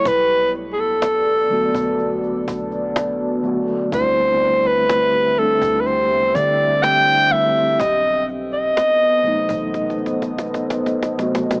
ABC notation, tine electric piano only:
X:1
M:4/4
L:1/8
Q:1/4=62
K:Bphr
V:1 name="Tine electric piano"
z3 [D,F,A,B,F]2 z2 [D,F,A,B,F] | [D,G,A,CE]2 z [D,G,A,CD]2 z2 [D,G,A,CE] | z3 [C,F,A,B,^D]2 z2 [C,F,A,B,F] |]